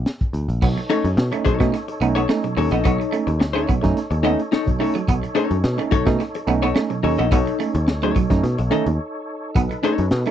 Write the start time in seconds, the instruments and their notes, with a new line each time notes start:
0.06 snare
0.20 kick, closed hi-hat
0.33 picked electric bass D2, closed hi-hat
0.48 picked electric bass A#1, closed hi-hat
0.62 picked electric bass B1, tine electric piano B2 F#3, clean electric guitar B3, tonewheel organ D#4 A4 C#5, kick, crash
0.78 muted clean electric guitar stroke, closed hi-hat
0.89 clean electric guitar A3, tine electric piano C#4 D#4, hollow-body jazz guitar D#4 A4 C#5, closed hi-hat
1.04 picked electric bass F#2, closed hi-hat
1.17 picked electric bass B2, snare
1.32 clean electric guitar A3, tine electric piano A3 C#4 D#4, muted hollow-body jazz guitar stroke, closed hi-hat
1.45 tine electric piano B2 F#3, hollow-body jazz guitar D#4 A4 C#5, muted clean electric guitar stroke, muted picked electric bass stroke, kick, closed hi-hat
1.59 picked electric bass B2, clean electric guitar A3, tine electric piano A3 C#4 D#4, muted hollow-body jazz guitar stroke, kick, snare, closed hi-hat
1.73 muted hollow-body jazz guitar stroke, muted clean electric guitar stroke, snare, closed hi-hat
1.88 muted hollow-body jazz guitar stroke, closed hi-hat
2.01 picked electric bass B1, tine electric piano A3 C#4 D#4, clean electric guitar B3, closed hi-hat
2.15 clean electric guitar B3, hollow-body jazz guitar D#4 A4 C#5, closed hi-hat
2.29 clean electric guitar A3, tine electric piano C#4 D#4, muted hollow-body jazz guitar stroke, snare
2.44 tine electric piano B2 F#3, muted hollow-body jazz guitar stroke, closed hi-hat
2.57 picked electric bass D#2, tine electric piano C#4 D#4, hollow-body jazz guitar D#4 A4 C#5, muted clean electric guitar stroke, open hi-hat
2.71 picked electric bass A#1, clean electric guitar B3, hollow-body jazz guitar D#4 A4 D#5, closed hi-hat
2.84 picked electric bass B1, tine electric piano B2 F#3, clean electric guitar B3, hollow-body jazz guitar D#4 A4 C#5, kick, closed hi-hat
3.00 muted clean electric guitar stroke, closed hi-hat
3.12 clean electric guitar A3, tine electric piano C#4 D#4, closed hi-hat
3.27 picked electric bass D#2, muted hollow-body jazz guitar stroke, closed hi-hat
3.40 picked electric bass D2, muted hollow-body jazz guitar stroke, muted clean electric guitar stroke, snare
3.53 tine electric piano A3 C#4 D#4, clean electric guitar A3, hollow-body jazz guitar D#4 A4 C#5, closed hi-hat
3.67 tine electric piano B2 F#3, clean electric guitar B3, muted hollow-body jazz guitar stroke, kick, closed hi-hat
3.81 picked electric bass F#2, tine electric piano A3 C#4 D#4, muted hollow-body jazz guitar stroke, kick, snare, closed hi-hat
3.97 muted picked electric bass stroke, snare, closed hi-hat
4.11 picked electric bass D#2, muted hollow-body jazz guitar stroke, closed hi-hat
4.23 tine electric piano A3 C#4 D#4, clean electric guitar B3, hollow-body jazz guitar D#4 A4 D#5, closed hi-hat
4.39 muted hollow-body jazz guitar stroke, closed hi-hat
4.51 tine electric piano C#4 D#4, hollow-body jazz guitar D#4 A4 C#5, muted clean electric guitar stroke, snare
4.66 tine electric piano B2 F#3, muted hollow-body jazz guitar stroke, kick, closed hi-hat
4.79 tine electric piano A3 C#4 D#4, clean electric guitar A3, hollow-body jazz guitar D#4 A4 C#5, open hi-hat
4.95 clean electric guitar F#3, muted hollow-body jazz guitar stroke, closed hi-hat
5.07 picked electric bass B1, tine electric piano B2 F#3, clean electric guitar B3, kick, closed hi-hat
5.23 muted clean electric guitar stroke, closed hi-hat
5.35 clean electric guitar A3, tine electric piano C#4 D#4, hollow-body jazz guitar D#4 A4 C#5, closed hi-hat
5.51 picked electric bass F#2, closed hi-hat
5.64 picked electric bass B2, snare
5.77 tine electric piano A3 C#4 D#4, clean electric guitar A3, muted hollow-body jazz guitar stroke, closed hi-hat
5.91 tine electric piano B2 F#3, hollow-body jazz guitar D#4 A4 C#5, muted clean electric guitar stroke, muted picked electric bass stroke, kick, closed hi-hat
6.06 picked electric bass B2, tine electric piano A3 C#4 D#4, clean electric guitar A3, muted hollow-body jazz guitar stroke, kick, snare, closed hi-hat
6.20 muted hollow-body jazz guitar stroke, muted clean electric guitar stroke, snare, closed hi-hat
6.34 muted hollow-body jazz guitar stroke, closed hi-hat
6.47 picked electric bass B1, tine electric piano A3 C#4 D#4, clean electric guitar B3, closed hi-hat
6.62 clean electric guitar B3, hollow-body jazz guitar D#4 A4 C#5, closed hi-hat
6.75 clean electric guitar A3, tine electric piano C#4 D#4, muted hollow-body jazz guitar stroke, snare
6.90 tine electric piano B2 F#3, muted hollow-body jazz guitar stroke, closed hi-hat
7.03 picked electric bass D#2, tine electric piano C#4 D#4, hollow-body jazz guitar D#4 A4 C#5, muted clean electric guitar stroke, open hi-hat
7.18 picked electric bass A#1, clean electric guitar B3, hollow-body jazz guitar D#4 A4 D#5, closed hi-hat
7.31 picked electric bass B1, tine electric piano B2 F#3, clean electric guitar B3, hollow-body jazz guitar D#4 A4 C#5, kick, closed hi-hat
7.47 muted clean electric guitar stroke, closed hi-hat
7.59 clean electric guitar A3, tine electric piano C#4 D#4, closed hi-hat
7.74 picked electric bass D#2, muted hollow-body jazz guitar stroke, closed hi-hat
7.88 picked electric bass D2, muted clean electric guitar stroke, muted hollow-body jazz guitar stroke, snare
8.02 clean electric guitar F#3, tine electric piano A3 C#4 D#4, hollow-body jazz guitar D#4 A4 C#5, closed hi-hat
8.15 tine electric piano B2 F#3, clean electric guitar F#3, muted hollow-body jazz guitar stroke, kick, closed hi-hat
8.30 picked electric bass F#2, tine electric piano A3 C#4 D#4, muted hollow-body jazz guitar stroke, kick, snare, closed hi-hat
8.43 picked electric bass B2, snare, closed hi-hat
8.58 picked electric bass B1, muted hollow-body jazz guitar stroke, closed hi-hat
8.71 clean electric guitar D#3, tine electric piano A3 C#4 D#4, hollow-body jazz guitar D#4 A4 D#5, closed hi-hat
8.86 picked electric bass D#2, muted hollow-body jazz guitar stroke, closed hi-hat
9.55 picked electric bass B1, tine electric piano B2 F#3, clean electric guitar B3, tonewheel organ B4, kick, closed hi-hat
9.71 muted clean electric guitar stroke, closed hi-hat
9.83 clean electric guitar A3, tine electric piano C#4 D#4, hollow-body jazz guitar D#4 A4 C#5, closed hi-hat
9.98 picked electric bass F#2, closed hi-hat
10.11 picked electric bass B2, snare
10.25 tine electric piano A3 C#4 D#4, clean electric guitar A3, muted hollow-body jazz guitar stroke, closed hi-hat